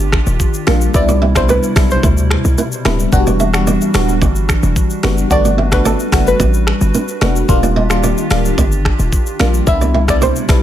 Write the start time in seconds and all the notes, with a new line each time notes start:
Already playing: G1 D#3 D4 F4 G4
0.12 finger snap, kick, cross-stick
0.27 D#1, shaker
0.40 kick, shaker
0.54 shaker
0.67 A#1 G3 A#3 D4 F4 A#4, finger snap, cross-stick, open hi-hat
0.81 shaker
0.94 C2 B2 C3 G3 B3 D4 E4 D5, kick, shaker
1.09 F#4 D5, shaker
1.22 G4 E5
1.35 G3 B3 D4 E4 C5, finger snap, kick, cross-stick, shaker
1.49 G4 B4 D5, shaker
1.63 shaker
1.76 B1 G3 B3 D4 E4, finger snap, kick, cross-stick, open hi-hat, shaker
1.91 C5, shaker
2.03 D2 E4 C5, kick, shaker
2.17 shaker
2.31 finger snap, cross-stick
2.45 C2, shaker
2.58 E4 B4, shaker
2.72 shaker
2.85 D1 G3 B3 D4 E4 B4, finger snap, cross-stick, open hi-hat
2.99 shaker
3.12 E1 E3 G3 B3 D4 F#4, kick, shaker
3.27 F#4 D5, shaker
3.40 G4 E5, shaker
3.54 G3 B3 D4 F#4, finger snap, cross-stick, shaker
3.67 F#4 D5, shaker
3.81 shaker
3.94 D1 G3 B3 D4 F#4, finger snap, cross-stick, open hi-hat, shaker
4.09 shaker
4.22 G1 F#4 D5, kick, shaker
4.36 shaker
4.49 finger snap, kick, cross-stick, shaker
4.63 E1, shaker
4.76 kick, shaker
4.90 shaker
5.03 F#1 G3 B3 D4 F#4 B4, finger snap, cross-stick, open hi-hat
5.18 shaker
5.30 G1 G3 A3 B3 D4 F#4 B4 D5, kick, shaker
5.45 F#4 D5, shaker
5.58 G4 E5
5.72 A3 B3 D4 F#4 B4, finger snap, kick, cross-stick, shaker
5.85 F#4 A4 D5, shaker
6.00 shaker
6.12 F#1 A3 B3 D4 F#4, finger snap, kick, cross-stick, open hi-hat, shaker
6.27 B4, shaker
6.40 A1 F#4 D5, kick, shaker
6.54 shaker
6.67 finger snap, cross-stick
6.81 G1, shaker
6.94 D4 B4, shaker
7.08 shaker
7.21 E1 A3 B3 D4 F#4 B4, finger snap, cross-stick, open hi-hat
7.36 shaker
7.48 D#1 D#3 G3 A#3 D4 F4 G4, kick, shaker
7.63 F4 D5, shaker
7.76 G4 D#5
7.90 G3 A#3 D4 F4, finger snap, cross-stick, shaker
8.04 F4 D5, shaker
8.18 shaker
8.30 D1 G3 A#3 D4 F4, finger snap, cross-stick, open hi-hat, shaker
8.45 shaker
8.58 G1 F4 D5, kick, shaker
8.72 shaker
8.85 finger snap, kick, cross-stick
8.99 D#1, shaker
9.13 kick, shaker
9.26 shaker
9.39 A#1 G3 A#3 D4 F4 A#4, finger snap, cross-stick, open hi-hat
9.54 shaker
9.67 C2 B2 C3 G3 B3 D4 E4 E5, kick, shaker
9.81 F#4 D5, shaker
9.94 G4 E5
10.08 G3 B3 D4 E4 D5, finger snap, kick, cross-stick, shaker
10.22 G4 C5 D5, shaker
10.36 shaker
10.48 B1 G3 B3 D4 E4, finger snap, kick, cross-stick, open hi-hat, shaker